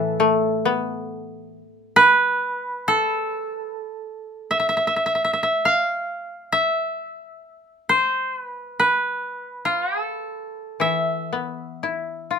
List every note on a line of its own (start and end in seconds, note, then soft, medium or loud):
0.00 2.06 A2 medium
0.00 1.58 E3 soft
0.00 1.19 A4 medium
0.00 0.97 B4 medium
0.00 0.54 E5 medium
0.20 2.07 A3 soft
0.65 2.56 B3 soft
1.96 3.74 B4 medium
2.88 4.78 A4 medium
4.51 4.59 E5 medium
4.60 4.68 E5 soft
4.69 4.76 E5 soft
4.77 4.87 E5 soft
4.87 4.96 E5 soft
4.96 5.06 E5 soft
5.06 5.15 E5 soft
5.15 5.24 E5 soft
5.24 5.33 E5 soft
5.33 5.43 E5 soft
5.43 5.71 E5 soft
5.65 6.58 F5 medium
6.52 8.02 E5 medium
7.89 8.39 C5 medium
8.39 8.80 B4 medium
8.80 10.57 B4 medium
9.65 10.01 F4 medium
10.01 11.56 A4 medium
10.80 12.39 E3 soft
10.80 12.39 E5 soft
11.33 12.39 B3 soft
11.83 12.39 E4 soft
12.31 12.39 F4 soft